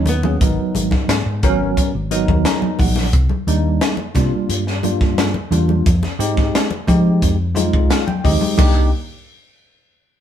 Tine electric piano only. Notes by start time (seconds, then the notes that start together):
Already playing: F#3 A#3 C#4 D#4
0.24 F#3 A#3 C#4 G#4
0.42 F#3 B3 D#4 A#4
1.43 F#3 B3 C#4 A#4
2.11 F#3 B3 D#4 A#4
2.46 A#5
2.79 F#5
3.47 G3 A#3 D4 D#4
4.15 G3 A#3 D4 F4
4.83 G3 A#3 D4 F4
5.51 G3 A#3 D4 F4
6.19 G#3 C4 D#4 G4
6.88 G#3 C4 D#4 G4
7.55 G#3 C4 D#4 F4
7.90 F5
8.07 G5
8.24 G#3 C4 D#4 G4 D#5
8.58 A#3 D4 D#4 G4